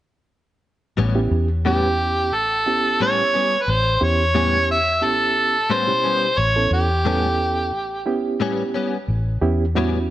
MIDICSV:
0, 0, Header, 1, 5, 480
1, 0, Start_track
1, 0, Tempo, 675676
1, 695, Time_signature, 4, 2, 24, 8
1, 7177, End_track
2, 0, Start_track
2, 0, Title_t, "Harmonica"
2, 0, Program_c, 0, 22
2, 1181, Note_on_c, 0, 67, 79
2, 1666, Note_on_c, 0, 69, 82
2, 1676, Note_off_c, 0, 67, 0
2, 2140, Note_off_c, 0, 69, 0
2, 2147, Note_on_c, 0, 73, 88
2, 2573, Note_on_c, 0, 71, 64
2, 2584, Note_off_c, 0, 73, 0
2, 2627, Note_on_c, 0, 72, 91
2, 2637, Note_off_c, 0, 71, 0
2, 2807, Note_off_c, 0, 72, 0
2, 2807, Note_on_c, 0, 72, 69
2, 2864, Note_on_c, 0, 73, 100
2, 2875, Note_off_c, 0, 72, 0
2, 3340, Note_off_c, 0, 73, 0
2, 3346, Note_on_c, 0, 76, 98
2, 3587, Note_on_c, 0, 69, 92
2, 3598, Note_off_c, 0, 76, 0
2, 4067, Note_on_c, 0, 72, 91
2, 4078, Note_off_c, 0, 69, 0
2, 4534, Note_on_c, 0, 73, 91
2, 4544, Note_off_c, 0, 72, 0
2, 4774, Note_off_c, 0, 73, 0
2, 4784, Note_on_c, 0, 67, 87
2, 5711, Note_off_c, 0, 67, 0
2, 7177, End_track
3, 0, Start_track
3, 0, Title_t, "Reed electric piano"
3, 0, Program_c, 1, 4
3, 819, Note_on_c, 1, 67, 88
3, 820, Note_on_c, 1, 64, 70
3, 821, Note_on_c, 1, 59, 83
3, 821, Note_on_c, 1, 61, 72
3, 1046, Note_off_c, 1, 67, 0
3, 1047, Note_off_c, 1, 59, 0
3, 1047, Note_off_c, 1, 61, 0
3, 1047, Note_off_c, 1, 64, 0
3, 1174, Note_on_c, 1, 61, 67
3, 1175, Note_on_c, 1, 64, 69
3, 1175, Note_on_c, 1, 67, 79
3, 1176, Note_on_c, 1, 59, 74
3, 1629, Note_off_c, 1, 61, 0
3, 1630, Note_off_c, 1, 64, 0
3, 1630, Note_off_c, 1, 67, 0
3, 1631, Note_off_c, 1, 59, 0
3, 1892, Note_on_c, 1, 64, 64
3, 1894, Note_on_c, 1, 61, 69
3, 1894, Note_on_c, 1, 67, 82
3, 1895, Note_on_c, 1, 59, 69
3, 2504, Note_off_c, 1, 64, 0
3, 2505, Note_off_c, 1, 61, 0
3, 2505, Note_off_c, 1, 67, 0
3, 2506, Note_off_c, 1, 59, 0
3, 2845, Note_on_c, 1, 61, 68
3, 2845, Note_on_c, 1, 67, 87
3, 2848, Note_on_c, 1, 59, 81
3, 2848, Note_on_c, 1, 64, 75
3, 3005, Note_off_c, 1, 61, 0
3, 3005, Note_off_c, 1, 67, 0
3, 3007, Note_off_c, 1, 59, 0
3, 3007, Note_off_c, 1, 64, 0
3, 3088, Note_on_c, 1, 64, 66
3, 3090, Note_on_c, 1, 61, 65
3, 3091, Note_on_c, 1, 59, 75
3, 3091, Note_on_c, 1, 67, 80
3, 3397, Note_off_c, 1, 64, 0
3, 3398, Note_off_c, 1, 59, 0
3, 3398, Note_off_c, 1, 61, 0
3, 3398, Note_off_c, 1, 67, 0
3, 3564, Note_on_c, 1, 59, 65
3, 3564, Note_on_c, 1, 61, 60
3, 3565, Note_on_c, 1, 67, 76
3, 3566, Note_on_c, 1, 64, 63
3, 3952, Note_off_c, 1, 59, 0
3, 3953, Note_off_c, 1, 61, 0
3, 3953, Note_off_c, 1, 64, 0
3, 3953, Note_off_c, 1, 67, 0
3, 4173, Note_on_c, 1, 61, 57
3, 4173, Note_on_c, 1, 64, 57
3, 4175, Note_on_c, 1, 47, 62
3, 4175, Note_on_c, 1, 67, 72
3, 4476, Note_off_c, 1, 61, 0
3, 4477, Note_off_c, 1, 64, 0
3, 4477, Note_off_c, 1, 67, 0
3, 4478, Note_off_c, 1, 47, 0
3, 4662, Note_on_c, 1, 61, 66
3, 4662, Note_on_c, 1, 69, 75
3, 4663, Note_on_c, 1, 64, 61
3, 4665, Note_on_c, 1, 59, 68
3, 4887, Note_off_c, 1, 61, 0
3, 4888, Note_off_c, 1, 64, 0
3, 4888, Note_off_c, 1, 69, 0
3, 4889, Note_off_c, 1, 59, 0
3, 5016, Note_on_c, 1, 69, 87
3, 5017, Note_on_c, 1, 59, 77
3, 5017, Note_on_c, 1, 61, 68
3, 5017, Note_on_c, 1, 64, 69
3, 5471, Note_off_c, 1, 59, 0
3, 5471, Note_off_c, 1, 61, 0
3, 5471, Note_off_c, 1, 64, 0
3, 5471, Note_off_c, 1, 69, 0
3, 5724, Note_on_c, 1, 64, 79
3, 5727, Note_on_c, 1, 61, 80
3, 5728, Note_on_c, 1, 59, 88
3, 5729, Note_on_c, 1, 67, 102
3, 6340, Note_off_c, 1, 64, 0
3, 6342, Note_off_c, 1, 59, 0
3, 6342, Note_off_c, 1, 61, 0
3, 6343, Note_off_c, 1, 67, 0
3, 6689, Note_on_c, 1, 67, 102
3, 6691, Note_on_c, 1, 61, 86
3, 6692, Note_on_c, 1, 64, 86
3, 6693, Note_on_c, 1, 59, 90
3, 6848, Note_off_c, 1, 61, 0
3, 6848, Note_off_c, 1, 67, 0
3, 6849, Note_off_c, 1, 64, 0
3, 6850, Note_off_c, 1, 59, 0
3, 6928, Note_on_c, 1, 59, 81
3, 6929, Note_on_c, 1, 64, 82
3, 6929, Note_on_c, 1, 66, 94
3, 6930, Note_on_c, 1, 61, 79
3, 7177, Note_off_c, 1, 59, 0
3, 7177, Note_off_c, 1, 61, 0
3, 7177, Note_off_c, 1, 64, 0
3, 7177, Note_off_c, 1, 66, 0
3, 7177, End_track
4, 0, Start_track
4, 0, Title_t, "Clean electric guitar"
4, 0, Program_c, 2, 27
4, 690, Note_on_c, 2, 45, 71
4, 694, Note_on_c, 2, 55, 75
4, 699, Note_on_c, 2, 59, 71
4, 702, Note_on_c, 2, 61, 76
4, 841, Note_off_c, 2, 45, 0
4, 843, Note_off_c, 2, 55, 0
4, 846, Note_off_c, 2, 59, 0
4, 847, Note_off_c, 2, 61, 0
4, 1173, Note_on_c, 2, 45, 72
4, 1178, Note_on_c, 2, 55, 70
4, 1181, Note_on_c, 2, 59, 70
4, 1184, Note_on_c, 2, 61, 74
4, 1322, Note_off_c, 2, 45, 0
4, 1325, Note_off_c, 2, 55, 0
4, 1327, Note_off_c, 2, 59, 0
4, 1328, Note_off_c, 2, 61, 0
4, 2133, Note_on_c, 2, 45, 66
4, 2138, Note_on_c, 2, 55, 69
4, 2143, Note_on_c, 2, 59, 74
4, 2145, Note_on_c, 2, 61, 80
4, 2283, Note_off_c, 2, 45, 0
4, 2285, Note_off_c, 2, 55, 0
4, 2287, Note_off_c, 2, 59, 0
4, 2289, Note_off_c, 2, 61, 0
4, 2371, Note_on_c, 2, 61, 47
4, 2380, Note_on_c, 2, 59, 45
4, 2386, Note_on_c, 2, 55, 41
4, 2521, Note_off_c, 2, 61, 0
4, 2526, Note_off_c, 2, 59, 0
4, 2529, Note_off_c, 2, 55, 0
4, 3086, Note_on_c, 2, 45, 73
4, 3092, Note_on_c, 2, 55, 73
4, 3095, Note_on_c, 2, 59, 76
4, 3097, Note_on_c, 2, 61, 79
4, 3239, Note_off_c, 2, 45, 0
4, 3242, Note_off_c, 2, 55, 0
4, 3243, Note_off_c, 2, 59, 0
4, 3244, Note_off_c, 2, 61, 0
4, 4046, Note_on_c, 2, 45, 69
4, 4052, Note_on_c, 2, 55, 68
4, 4056, Note_on_c, 2, 59, 78
4, 4059, Note_on_c, 2, 61, 82
4, 4199, Note_off_c, 2, 45, 0
4, 4202, Note_off_c, 2, 55, 0
4, 4204, Note_off_c, 2, 59, 0
4, 4205, Note_off_c, 2, 61, 0
4, 4288, Note_on_c, 2, 61, 52
4, 4296, Note_on_c, 2, 59, 50
4, 4305, Note_on_c, 2, 55, 44
4, 4440, Note_off_c, 2, 61, 0
4, 4444, Note_off_c, 2, 59, 0
4, 4448, Note_off_c, 2, 55, 0
4, 5008, Note_on_c, 2, 45, 71
4, 5015, Note_on_c, 2, 55, 68
4, 5019, Note_on_c, 2, 59, 70
4, 5021, Note_on_c, 2, 61, 84
4, 5160, Note_off_c, 2, 45, 0
4, 5164, Note_off_c, 2, 55, 0
4, 5165, Note_off_c, 2, 59, 0
4, 5166, Note_off_c, 2, 61, 0
4, 5967, Note_on_c, 2, 45, 79
4, 5973, Note_on_c, 2, 55, 80
4, 5975, Note_on_c, 2, 59, 79
4, 5979, Note_on_c, 2, 61, 94
4, 6120, Note_off_c, 2, 45, 0
4, 6123, Note_off_c, 2, 55, 0
4, 6124, Note_off_c, 2, 59, 0
4, 6125, Note_off_c, 2, 61, 0
4, 6212, Note_on_c, 2, 61, 62
4, 6220, Note_on_c, 2, 59, 53
4, 6228, Note_on_c, 2, 55, 45
4, 6362, Note_off_c, 2, 61, 0
4, 6366, Note_off_c, 2, 59, 0
4, 6370, Note_off_c, 2, 55, 0
4, 6934, Note_on_c, 2, 45, 72
4, 6938, Note_on_c, 2, 55, 80
4, 6939, Note_on_c, 2, 59, 84
4, 6945, Note_on_c, 2, 61, 88
4, 7083, Note_off_c, 2, 45, 0
4, 7085, Note_off_c, 2, 55, 0
4, 7086, Note_off_c, 2, 59, 0
4, 7089, Note_off_c, 2, 61, 0
4, 7177, End_track
5, 0, Start_track
5, 0, Title_t, "Fingered electric bass"
5, 0, Program_c, 3, 33
5, 698, Note_on_c, 3, 33, 85
5, 921, Note_off_c, 3, 33, 0
5, 931, Note_on_c, 3, 40, 86
5, 1649, Note_off_c, 3, 40, 0
5, 1649, Note_on_c, 3, 33, 91
5, 2583, Note_off_c, 3, 33, 0
5, 2613, Note_on_c, 3, 33, 87
5, 2838, Note_off_c, 3, 33, 0
5, 2853, Note_on_c, 3, 40, 81
5, 3574, Note_off_c, 3, 40, 0
5, 3574, Note_on_c, 3, 33, 90
5, 4506, Note_off_c, 3, 33, 0
5, 4530, Note_on_c, 3, 33, 89
5, 4757, Note_off_c, 3, 33, 0
5, 4765, Note_on_c, 3, 40, 86
5, 5484, Note_off_c, 3, 40, 0
5, 5484, Note_on_c, 3, 33, 93
5, 6422, Note_off_c, 3, 33, 0
5, 6452, Note_on_c, 3, 33, 86
5, 6678, Note_off_c, 3, 33, 0
5, 6689, Note_on_c, 3, 40, 83
5, 7177, Note_off_c, 3, 40, 0
5, 7177, End_track
0, 0, End_of_file